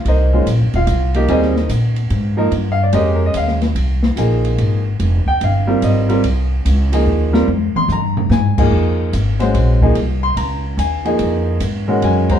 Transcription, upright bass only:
X:1
M:3/4
L:1/8
Q:"Swing" 1/4=145
K:Fm
V:1 name="Upright bass" clef=bass
C,,2 (3B,,, G,,, E,,, C,,2 | E,,2 B,,2 A,,2 | G,,2 F,,2 E,,2 | C,,2 B,,,2 A,,,2 |
F,,, z G,,,2 A,,,2 | C,,2 D,,2 E,,2 | F,, z G,,2 A,,2 | [K:Fphr] F,,2 A,,,2 B,,,2 |
C,,2 D,,2 E,,2 | F,,2 A,,2 G,,2 |]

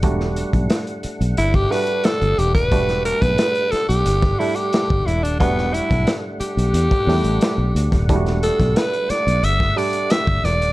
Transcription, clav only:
X:1
M:4/4
L:1/16
Q:1/4=89
K:Em
V:1 name="Clav"
[G,A,DF]4 z6 [G,A,DF]3 z3 | [G,A,DF]4 z6 [G,A,DG]3 z3 | [G,A,DF]4 z6 [F,G,A,DG]3 z3 | [G,A,DEF]4 z6 [G,A,DG]3 z3 |]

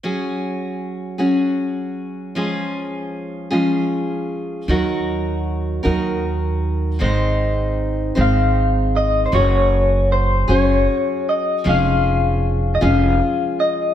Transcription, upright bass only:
X:1
M:6/8
L:1/8
Q:3/8=52
K:Gblyd
V:1 name="Upright bass" clef=bass
z6 | z6 | E,,3 E,,3 | A,,,3 A,,,3 |
G,,,3 G,,, z2 | F,,,3 F,,, z2 |]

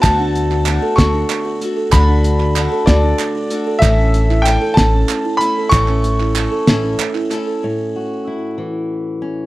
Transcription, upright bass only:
X:1
M:6/8
L:1/8
Q:3/8=63
K:Amix
V:1 name="Upright bass" clef=bass
D,,3 D,, z2 | D,,3 D,, z2 | A,,,3 A,,, z2 | A,,,3 A,,, z2 |
z6 |]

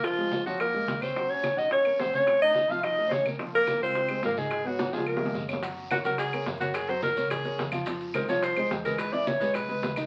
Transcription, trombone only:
X:1
M:4/4
L:1/16
Q:1/4=214
K:Gblyd
V:1 name="Trombone"
F,6 G,2 B,6 C2- | C2 D4 E2 D4 C2 D2- | D2 E4 F2 E3- E/2 C/2 D2 z2 | z2 B,4 C6 B,2 A,2- |
A,2 G,4 A,2 B,6 z2 | z16 | z16 | z16 |
z16 |]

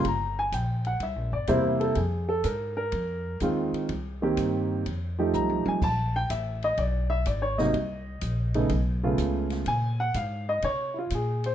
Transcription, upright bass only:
X:1
M:4/4
L:1/8
Q:"Swing" 1/4=125
K:Fphr
V:1 name="Upright bass" clef=bass
=G,,,2 B,,,2 (3C,, B,,, G,,, =E,,2 | F,,2 A,,2 F,,2 E,, z | C,,2 =G,,2 F,,2 C,, z | B,,,2 =A,,,2 =B,,,2 _A,,,2 |
C,,2 B,,,2 =B,,,2 ^C,,2 | B,,2 A,,2 C,2 B,,2 |]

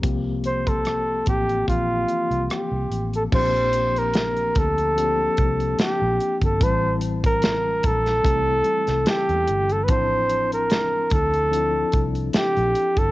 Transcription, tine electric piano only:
X:1
M:4/4
L:1/8
Q:"Swing 16ths" 1/4=73
K:Bblyd
V:1 name="Tine electric piano"
[F,B,CG]3 [F,B,CG] [E,F,B,CG]4 | [F,B,CDG]4 [F,B,CDG]4 | [E,G,CEa]4 [G,A,CEA]4 | [F,CDEa]4 [F,CDEA]4 |]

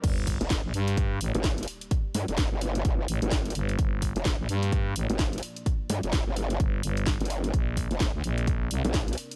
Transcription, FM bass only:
X:1
M:4/4
L:1/16
Q:"Swing 16ths" 1/4=128
K:Gm
V:1 name="FM bass" clef=bass
G,,,3 z2 B,,, G,,4 A,,, z4 z | z8 z2 A,,, z3 G,,,2 | G,,,3 z2 B,,, G,,4 A,,, z4 z | z8 G,,,2 G,,,3 z3 |
B,,,3 z2 D,, B,,,4 C,, z4 z |]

